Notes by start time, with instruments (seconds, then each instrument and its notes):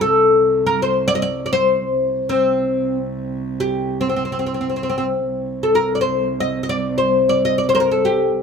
Already playing: cello C2
0.01 oud A4
0.66 oud A#4
0.82 oud C5
1.08 oud D5
1.15 oud D#5
1.22 oud D5
1.46 oud D5
1.53 oud C5
1.89 cello C2
2.29 oud C4
3.60 oud G4
4.01 oud C4
4.09 oud C4
4.16 oud C4
4.25 oud C4
4.32 oud C4
4.39 oud C4
4.46 oud C4
4.54 oud C4
4.61 oud C4
4.69 oud C4
4.76 oud C4
4.83 oud C4
4.90 oud C4
4.98 oud C4
5.26 cello C2
5.63 oud A4
5.75 oud A#4
5.95 oud D5
6.01 oud C5
6.40 oud D#5
6.63 oud D#5
6.69 oud D5
6.98 oud C5
7.29 oud D5
7.45 oud D#5
7.58 oud D5
7.69 oud C5
7.75 oud A#4 C5
7.80 oud A#4
7.91 oud A4
8.05 oud G4